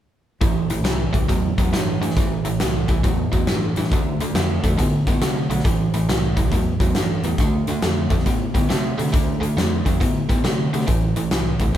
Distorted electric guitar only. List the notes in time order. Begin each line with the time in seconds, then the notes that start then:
0.41 A2 E3
0.70 A2 E3
0.84 A2 E3
1.13 A2 E3
1.28 A2 F#3
1.58 A2 F#3
1.73 A2 E3
2.01 A2 E3
2.17 A2 E3
2.45 A2 E3
2.61 A2 E3
2.89 A2 E3
3.04 A2 F#3
3.32 A2 F#3
3.48 A2 E3
3.77 A2 E3
3.93 D3 A3
4.21 D3 A3
4.35 D3 A3
4.64 D3 A3
4.78 D3 B3
5.07 D3 B3
5.22 D3 A3
5.50 D3 A3
5.65 A2 E3
5.94 A2 E3
6.09 A2 E3
6.37 A2 E3
6.52 A2 F#3
6.80 A2 F#3
6.96 A2 E3
7.24 A2 E3
7.40 D3 A3
7.68 D3 A3
7.83 D3 A3
8.10 D3 A3
8.26 D3 B3
8.55 D3 B3
8.69 D3 A3
8.98 D3 A3
9.13 D3 A3
9.41 D3 A3
9.57 D3 A3
9.86 D3 A3
10.01 D3 B3
10.30 D3 B3
10.44 D3 A3
10.73 D3 A3
10.87 A2 E3
11.17 A2 E3
11.32 A2 E3
11.61 A2 E3